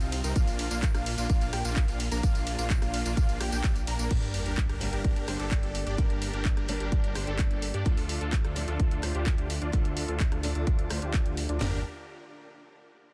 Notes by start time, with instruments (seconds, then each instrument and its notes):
0.01 detuned saw bass C2, supersaw synth C4 D#4 F4, analog synth lead F5, closed hi-hat, tambourine
0.12 open hi-hat, ride
0.24 detuned saw bass C2, supersaw synth C4 D#4 A#4, analog synth lead A#5, closed hi-hat, tambourine
0.36 detuned saw bass A#1, supersaw synth A#3 D4, analog synth lead F5, kick, closed hi-hat, tambourine
0.47 open hi-hat, tambourine
0.59 open hi-hat, ride
0.71 detuned saw bass A#1, supersaw synth A#3 D4 F4, analog synth lead F5, closed hi-hat, tambourine
0.82 kick, clap, closed hi-hat, tambourine
0.94 detuned saw bass A#1, supersaw synth A#3 D4 F4, analog synth lead F5, cross-stick, closed hi-hat, tambourine
1.06 open hi-hat, ride
1.18 detuned saw bass A#1, supersaw synth A#3 D4 F4, analog synth lead F5, closed hi-hat, tambourine
1.30 detuned saw bass A#1, supersaw synth A#3 D4 F4, analog synth lead F5, kick, closed hi-hat, tambourine
1.41 detuned saw bass A#1, supersaw synth A#3 D4 F4, analog synth lead F5, closed hi-hat, tambourine
1.53 detuned saw bass A#1, supersaw synth A#3 D4 G4, analog synth lead G5, cross-stick, open hi-hat, ride
1.65 detuned saw bass A#1, supersaw synth A#3 D4 F4, analog synth lead F5, closed hi-hat, tambourine
1.76 kick, clap, closed hi-hat, tambourine
1.88 detuned saw bass A#1, supersaw synth A#3 D4 F4, analog synth lead F5, closed hi-hat, tambourine
2.00 open hi-hat, ride
2.12 detuned saw bass A#1, supersaw synth A#3 D4 A#4, analog synth lead A#5, closed hi-hat, tambourine
2.23 detuned saw bass A#1, analog synth lead F5, kick, closed hi-hat, tambourine
2.35 closed hi-hat, tambourine
2.47 open hi-hat, ride
2.59 detuned saw bass A#1, supersaw synth A#3 D4 F4, analog synth lead F5, closed hi-hat, tambourine
2.70 kick, clap, closed hi-hat, tambourine
2.82 detuned saw bass A#1, supersaw synth A#3 D4 F4, analog synth lead F5, cross-stick, closed hi-hat, tambourine
2.94 open hi-hat, ride
3.05 detuned saw bass A#1, supersaw synth A#3 D4 F4, analog synth lead F5, closed hi-hat, tambourine
3.17 detuned saw bass A#1, supersaw synth A#3 D4 F4, analog synth lead F5, kick, closed hi-hat, tambourine
3.29 detuned saw bass A#1, supersaw synth A#3 D4 F4, analog synth lead F5, closed hi-hat, tambourine
3.40 detuned saw bass A#1, supersaw synth A#3 D4 G4, analog synth lead G5, cross-stick, open hi-hat, ride
3.52 detuned saw bass A#1, supersaw synth A#3 D4 G4, analog synth lead G5, open hi-hat, tambourine
3.64 detuned saw bass A#1, supersaw synth G4, kick, clap, closed hi-hat, tambourine
3.76 closed hi-hat, tambourine
3.87 detuned saw bass A#1, supersaw synth A#3 D4 A#4, analog synth lead A#5, open hi-hat, ride
3.99 detuned saw bass A#1, supersaw synth A#3 D4 A#4, analog synth lead A#5, closed hi-hat, tambourine
4.10 detuned saw bass G1, steel-string acoustic guitar G2 D3 G3 A#3 D4, supersaw synth D4 G4 A#4, kick, closed hi-hat, crash, sub drop
4.22 open hi-hat
4.34 open hi-hat
4.46 detuned saw bass G1, supersaw synth D4 G4 A#4, closed hi-hat
4.57 kick, clap, closed hi-hat
4.69 detuned saw bass G1, supersaw synth D4 G4 A#4, cross-stick, closed hi-hat
4.80 steel-string acoustic guitar G2 D3 G3 A#3 D4, open hi-hat
4.93 detuned saw bass G1, supersaw synth D4 G4 A#4, closed hi-hat
5.04 detuned saw bass G1, kick, closed hi-hat
5.16 detuned saw bass G1, supersaw synth D4 G4 A#4, closed hi-hat
5.27 detuned saw bass G1, steel-string acoustic guitar G2 D3 G3 A#3 D4, supersaw synth D4 G4 C5, cross-stick, open hi-hat
5.40 detuned saw bass G1, supersaw synth D4 G4 A4, closed hi-hat
5.51 kick, clap, closed hi-hat
5.63 detuned saw bass G1, supersaw synth D4 G4 A4, closed hi-hat
5.75 open hi-hat
5.86 detuned saw bass G1, supersaw synth D4 G4 D5, closed hi-hat
5.97 detuned saw bass G1, steel-string acoustic guitar G2 D3 G3 A#3 D4, supersaw synth D4 G4 A#4, kick, closed hi-hat
6.10 closed hi-hat
6.22 open hi-hat
6.33 detuned saw bass G1, supersaw synth D4 G4 A#4, closed hi-hat
6.45 kick, clap, closed hi-hat
6.57 detuned saw bass G1, supersaw synth D4 G4 A#4, cross-stick, closed hi-hat
6.68 steel-string acoustic guitar G2 D3 G3 A#3 D4, open hi-hat
6.80 detuned saw bass G1, supersaw synth D4 G4 A#4, closed hi-hat
6.92 detuned saw bass G1, supersaw synth D4 G4 A#4, kick, closed hi-hat
7.04 detuned saw bass G1, supersaw synth D4 G4 A#4, closed hi-hat
7.14 detuned saw bass G1, steel-string acoustic guitar G2 D3 G3 A#3 D4, supersaw synth D4 G4 C5, cross-stick, open hi-hat
7.27 detuned saw bass G1, supersaw synth D4 G4 A4, closed hi-hat
7.39 kick, clap, closed hi-hat
7.51 detuned saw bass G1, supersaw synth D4 G4 A4, closed hi-hat
7.62 open hi-hat
7.74 detuned saw bass G2, supersaw synth D4 G4 D5, closed hi-hat
7.85 detuned saw bass D2, steel-string acoustic guitar D3 F3 A3 D4, supersaw synth D4 F4 A4, kick, closed hi-hat
7.97 open hi-hat
8.09 open hi-hat
8.21 detuned saw bass D2, supersaw synth D4 F4 A4, closed hi-hat
8.33 kick, clap, closed hi-hat
8.45 detuned saw bass D2, supersaw synth D4 F4 A4, cross-stick, closed hi-hat
8.56 steel-string acoustic guitar D3 F3 A3 D4, open hi-hat
8.68 detuned saw bass D2, supersaw synth D4 F4 A4, closed hi-hat
8.80 detuned saw bass D2, supersaw synth D4 F4 A4, kick, closed hi-hat
8.91 detuned saw bass D2, supersaw synth D4 F4 A4, closed hi-hat
9.02 detuned saw bass D2, steel-string acoustic guitar D3 F3 A3 D4, supersaw synth D4 F4 C5, cross-stick, open hi-hat
9.15 detuned saw bass D2, supersaw synth D4 F4 G4, closed hi-hat
9.26 kick, clap, closed hi-hat
9.38 detuned saw bass D2, supersaw synth D4 F4 G4, closed hi-hat
9.50 open hi-hat
9.62 detuned saw bass D2, supersaw synth D4 F4 D5, closed hi-hat
9.72 detuned saw bass D2, steel-string acoustic guitar D3 F3 A3 D4, supersaw synth D4 F4 A4, kick, closed hi-hat
9.85 closed hi-hat
9.97 open hi-hat
10.08 detuned saw bass D2, supersaw synth D4 F4 A4, closed hi-hat
10.20 kick, clap, closed hi-hat
10.32 detuned saw bass D2, supersaw synth D4 F4 A4, cross-stick, closed hi-hat
10.43 steel-string acoustic guitar D3 F3 A3 D4, open hi-hat
10.55 detuned saw bass D2, supersaw synth D4 F4 A4, closed hi-hat
10.67 detuned saw bass D2, kick, closed hi-hat
10.79 detuned saw bass D2, supersaw synth D4 F4 A4, closed hi-hat
10.89 detuned saw bass D2, steel-string acoustic guitar D3 F3 A3 D4, supersaw synth D4 F4 C5, cross-stick, open hi-hat
11.02 detuned saw bass D2, supersaw synth D4 F4 G4, closed hi-hat
11.14 kick, clap, closed hi-hat
11.26 detuned saw bass D2, supersaw synth D4 F4 G4, closed hi-hat
11.37 open hi-hat
11.49 detuned saw bass D2, supersaw synth D4 F4 D5, closed hi-hat
11.59 detuned saw bass G1, steel-string acoustic guitar D3 G3 A#3 D4, supersaw synth D4 G4 A#4, snare, floor tom